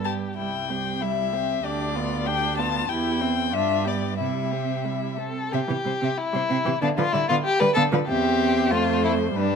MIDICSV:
0, 0, Header, 1, 5, 480
1, 0, Start_track
1, 0, Key_signature, 0, "major"
1, 0, Tempo, 634921
1, 283, Time_signature, 2, 2, 24, 8
1, 2675, Tempo, 662252
1, 4595, Tempo, 634921
1, 7141, End_track
2, 0, Start_track
2, 0, Title_t, "Violin"
2, 0, Program_c, 0, 40
2, 34, Note_on_c, 0, 81, 53
2, 95, Note_off_c, 0, 81, 0
2, 280, Note_on_c, 0, 79, 51
2, 772, Note_on_c, 0, 76, 62
2, 783, Note_off_c, 0, 79, 0
2, 1242, Note_on_c, 0, 74, 65
2, 1253, Note_off_c, 0, 76, 0
2, 1711, Note_on_c, 0, 79, 77
2, 1722, Note_off_c, 0, 74, 0
2, 1940, Note_off_c, 0, 79, 0
2, 1945, Note_on_c, 0, 81, 77
2, 2183, Note_on_c, 0, 79, 66
2, 2194, Note_off_c, 0, 81, 0
2, 2673, Note_on_c, 0, 76, 73
2, 2684, Note_off_c, 0, 79, 0
2, 2916, Note_on_c, 0, 74, 53
2, 2927, Note_off_c, 0, 76, 0
2, 3147, Note_off_c, 0, 74, 0
2, 3152, Note_on_c, 0, 76, 48
2, 3867, Note_off_c, 0, 76, 0
2, 4121, Note_on_c, 0, 76, 58
2, 4168, Note_off_c, 0, 76, 0
2, 4243, Note_on_c, 0, 67, 38
2, 4290, Note_off_c, 0, 67, 0
2, 4359, Note_on_c, 0, 72, 46
2, 4406, Note_off_c, 0, 72, 0
2, 4486, Note_on_c, 0, 76, 57
2, 4531, Note_off_c, 0, 76, 0
2, 4719, Note_on_c, 0, 72, 48
2, 4766, Note_off_c, 0, 72, 0
2, 4836, Note_on_c, 0, 76, 72
2, 4884, Note_off_c, 0, 76, 0
2, 4950, Note_on_c, 0, 67, 46
2, 4999, Note_off_c, 0, 67, 0
2, 5076, Note_on_c, 0, 77, 74
2, 5124, Note_off_c, 0, 77, 0
2, 5193, Note_on_c, 0, 71, 51
2, 5241, Note_off_c, 0, 71, 0
2, 5312, Note_on_c, 0, 74, 59
2, 5360, Note_off_c, 0, 74, 0
2, 5435, Note_on_c, 0, 77, 79
2, 5482, Note_off_c, 0, 77, 0
2, 5668, Note_on_c, 0, 74, 54
2, 5716, Note_off_c, 0, 74, 0
2, 5787, Note_on_c, 0, 77, 76
2, 5835, Note_off_c, 0, 77, 0
2, 5916, Note_on_c, 0, 71, 58
2, 5962, Note_off_c, 0, 71, 0
2, 6031, Note_on_c, 0, 76, 65
2, 6506, Note_on_c, 0, 72, 67
2, 6517, Note_off_c, 0, 76, 0
2, 6988, Note_on_c, 0, 71, 58
2, 6999, Note_off_c, 0, 72, 0
2, 7141, Note_off_c, 0, 71, 0
2, 7141, End_track
3, 0, Start_track
3, 0, Title_t, "Violin"
3, 0, Program_c, 1, 40
3, 36, Note_on_c, 1, 67, 38
3, 278, Note_off_c, 1, 67, 0
3, 283, Note_on_c, 1, 64, 38
3, 523, Note_on_c, 1, 67, 34
3, 535, Note_off_c, 1, 64, 0
3, 761, Note_on_c, 1, 64, 37
3, 772, Note_off_c, 1, 67, 0
3, 1008, Note_on_c, 1, 67, 39
3, 1019, Note_off_c, 1, 64, 0
3, 1231, Note_off_c, 1, 67, 0
3, 1236, Note_on_c, 1, 67, 42
3, 1482, Note_on_c, 1, 65, 43
3, 1493, Note_off_c, 1, 67, 0
3, 1713, Note_on_c, 1, 67, 50
3, 1724, Note_off_c, 1, 65, 0
3, 1956, Note_on_c, 1, 65, 48
3, 1967, Note_off_c, 1, 67, 0
3, 2189, Note_off_c, 1, 65, 0
3, 2193, Note_on_c, 1, 67, 51
3, 2428, Note_on_c, 1, 64, 45
3, 2439, Note_off_c, 1, 67, 0
3, 2657, Note_off_c, 1, 64, 0
3, 2661, Note_on_c, 1, 65, 46
3, 2897, Note_on_c, 1, 67, 39
3, 2908, Note_off_c, 1, 65, 0
3, 3134, Note_off_c, 1, 67, 0
3, 3138, Note_on_c, 1, 64, 35
3, 3380, Note_on_c, 1, 67, 30
3, 3391, Note_off_c, 1, 64, 0
3, 3631, Note_on_c, 1, 64, 34
3, 3642, Note_off_c, 1, 67, 0
3, 3866, Note_off_c, 1, 64, 0
3, 3870, Note_on_c, 1, 69, 52
3, 4113, Note_on_c, 1, 67, 64
3, 4124, Note_off_c, 1, 69, 0
3, 4586, Note_on_c, 1, 64, 79
3, 4597, Note_off_c, 1, 67, 0
3, 5065, Note_off_c, 1, 64, 0
3, 5069, Note_on_c, 1, 62, 81
3, 5118, Note_off_c, 1, 62, 0
3, 5194, Note_on_c, 1, 65, 77
3, 5305, Note_on_c, 1, 64, 85
3, 5316, Note_off_c, 1, 65, 0
3, 5422, Note_off_c, 1, 64, 0
3, 5427, Note_on_c, 1, 65, 77
3, 5475, Note_off_c, 1, 65, 0
3, 5543, Note_on_c, 1, 67, 93
3, 5661, Note_on_c, 1, 71, 87
3, 5672, Note_off_c, 1, 67, 0
3, 5765, Note_off_c, 1, 71, 0
3, 5769, Note_on_c, 1, 69, 97
3, 5830, Note_off_c, 1, 69, 0
3, 6023, Note_on_c, 1, 67, 82
3, 6502, Note_on_c, 1, 65, 86
3, 6514, Note_off_c, 1, 67, 0
3, 6745, Note_off_c, 1, 65, 0
3, 6754, Note_on_c, 1, 64, 77
3, 6814, Note_off_c, 1, 64, 0
3, 6986, Note_on_c, 1, 62, 69
3, 7141, Note_off_c, 1, 62, 0
3, 7141, End_track
4, 0, Start_track
4, 0, Title_t, "Viola"
4, 0, Program_c, 2, 41
4, 0, Note_on_c, 2, 59, 43
4, 125, Note_off_c, 2, 59, 0
4, 287, Note_on_c, 2, 55, 36
4, 528, Note_on_c, 2, 60, 32
4, 539, Note_off_c, 2, 55, 0
4, 776, Note_on_c, 2, 55, 35
4, 788, Note_off_c, 2, 60, 0
4, 1007, Note_on_c, 2, 60, 35
4, 1018, Note_off_c, 2, 55, 0
4, 1243, Note_off_c, 2, 60, 0
4, 1249, Note_on_c, 2, 62, 43
4, 1479, Note_on_c, 2, 59, 43
4, 1491, Note_off_c, 2, 62, 0
4, 1723, Note_on_c, 2, 62, 48
4, 1734, Note_off_c, 2, 59, 0
4, 1957, Note_on_c, 2, 59, 45
4, 1969, Note_off_c, 2, 62, 0
4, 2190, Note_off_c, 2, 59, 0
4, 2194, Note_on_c, 2, 64, 48
4, 2432, Note_on_c, 2, 60, 43
4, 2444, Note_off_c, 2, 64, 0
4, 2673, Note_off_c, 2, 60, 0
4, 2678, Note_on_c, 2, 62, 44
4, 2910, Note_on_c, 2, 59, 39
4, 2921, Note_off_c, 2, 62, 0
4, 3146, Note_off_c, 2, 59, 0
4, 3150, Note_on_c, 2, 55, 34
4, 3391, Note_on_c, 2, 60, 30
4, 3402, Note_off_c, 2, 55, 0
4, 3628, Note_on_c, 2, 55, 33
4, 3639, Note_off_c, 2, 60, 0
4, 3867, Note_on_c, 2, 60, 29
4, 3878, Note_off_c, 2, 55, 0
4, 4108, Note_off_c, 2, 60, 0
4, 4112, Note_on_c, 2, 60, 55
4, 4161, Note_off_c, 2, 60, 0
4, 4227, Note_on_c, 2, 52, 41
4, 4277, Note_off_c, 2, 52, 0
4, 4347, Note_on_c, 2, 55, 41
4, 4397, Note_off_c, 2, 55, 0
4, 4467, Note_on_c, 2, 60, 64
4, 4516, Note_off_c, 2, 60, 0
4, 4703, Note_on_c, 2, 55, 50
4, 4753, Note_off_c, 2, 55, 0
4, 4828, Note_on_c, 2, 60, 59
4, 4877, Note_off_c, 2, 60, 0
4, 4947, Note_on_c, 2, 52, 51
4, 4996, Note_off_c, 2, 52, 0
4, 5074, Note_on_c, 2, 59, 64
4, 5122, Note_off_c, 2, 59, 0
4, 5194, Note_on_c, 2, 53, 48
4, 5242, Note_off_c, 2, 53, 0
4, 5307, Note_on_c, 2, 55, 49
4, 5356, Note_off_c, 2, 55, 0
4, 5430, Note_on_c, 2, 59, 78
4, 5478, Note_off_c, 2, 59, 0
4, 5668, Note_on_c, 2, 55, 65
4, 5715, Note_off_c, 2, 55, 0
4, 5783, Note_on_c, 2, 59, 78
4, 5831, Note_off_c, 2, 59, 0
4, 5906, Note_on_c, 2, 53, 59
4, 5954, Note_off_c, 2, 53, 0
4, 6022, Note_on_c, 2, 60, 64
4, 6505, Note_on_c, 2, 57, 62
4, 6516, Note_off_c, 2, 60, 0
4, 6985, Note_off_c, 2, 57, 0
4, 6990, Note_on_c, 2, 55, 55
4, 7141, Note_off_c, 2, 55, 0
4, 7141, End_track
5, 0, Start_track
5, 0, Title_t, "Cello"
5, 0, Program_c, 3, 42
5, 0, Note_on_c, 3, 43, 42
5, 114, Note_off_c, 3, 43, 0
5, 283, Note_on_c, 3, 36, 40
5, 1211, Note_off_c, 3, 36, 0
5, 1244, Note_on_c, 3, 38, 55
5, 2171, Note_off_c, 3, 38, 0
5, 2195, Note_on_c, 3, 40, 56
5, 2681, Note_on_c, 3, 43, 52
5, 2691, Note_off_c, 3, 40, 0
5, 3158, Note_on_c, 3, 48, 42
5, 3169, Note_off_c, 3, 43, 0
5, 3975, Note_off_c, 3, 48, 0
5, 4123, Note_on_c, 3, 48, 63
5, 4170, Note_off_c, 3, 48, 0
5, 4241, Note_on_c, 3, 48, 41
5, 4288, Note_off_c, 3, 48, 0
5, 4353, Note_on_c, 3, 48, 47
5, 4401, Note_off_c, 3, 48, 0
5, 4476, Note_on_c, 3, 48, 63
5, 4522, Note_off_c, 3, 48, 0
5, 4716, Note_on_c, 3, 48, 47
5, 4764, Note_off_c, 3, 48, 0
5, 4832, Note_on_c, 3, 48, 71
5, 4880, Note_off_c, 3, 48, 0
5, 4958, Note_on_c, 3, 48, 53
5, 5005, Note_off_c, 3, 48, 0
5, 5075, Note_on_c, 3, 50, 73
5, 5123, Note_off_c, 3, 50, 0
5, 5196, Note_on_c, 3, 50, 54
5, 5243, Note_off_c, 3, 50, 0
5, 5318, Note_on_c, 3, 50, 54
5, 5365, Note_off_c, 3, 50, 0
5, 5438, Note_on_c, 3, 50, 73
5, 5485, Note_off_c, 3, 50, 0
5, 5675, Note_on_c, 3, 50, 52
5, 5721, Note_off_c, 3, 50, 0
5, 5791, Note_on_c, 3, 50, 78
5, 5838, Note_off_c, 3, 50, 0
5, 5909, Note_on_c, 3, 50, 59
5, 5956, Note_off_c, 3, 50, 0
5, 6031, Note_on_c, 3, 40, 68
5, 6505, Note_on_c, 3, 41, 62
5, 6517, Note_off_c, 3, 40, 0
5, 6991, Note_off_c, 3, 41, 0
5, 6994, Note_on_c, 3, 43, 61
5, 7141, Note_off_c, 3, 43, 0
5, 7141, End_track
0, 0, End_of_file